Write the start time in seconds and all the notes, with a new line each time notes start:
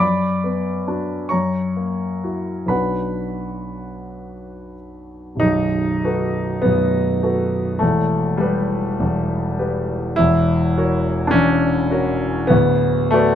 Already playing: F#2 D6
0.00 D5 B5
0.44 B3
0.88 D4 F#4
1.29 F#2 C#5 A#5 C#6
1.76 A#3
2.24 E4 F#4
2.66 B1 B3 D4 F#4 B4 F#5 B5
5.36 B0
5.40 B1 D#4
6.05 F#4 A4 B4
6.62 B0 B1 B3
7.23 F#4 A4 B4
7.79 E1 E2 A3
8.37 G3 G4 B4
9.00 E1 E2
9.59 G4 B4
10.16 E1 E2 E4
10.77 F#4 A#4 C#5
11.27 C#4 D4
11.33 E1 E2
11.91 F#4 A#4 C#5
12.47 D1 D2 B3
13.11 A3 F#4 B4 D5